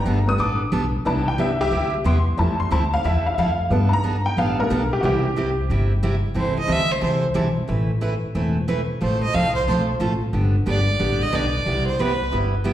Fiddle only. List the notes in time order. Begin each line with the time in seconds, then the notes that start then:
6.38 C5
6.59 D#5
6.72 E5
6.92 C5
7.03 C5
9.03 C5
9.23 D#5
9.34 F5
9.55 C5
9.68 C5
10.70 D5
11.23 D#5
11.35 D5
11.87 C5
12.00 B4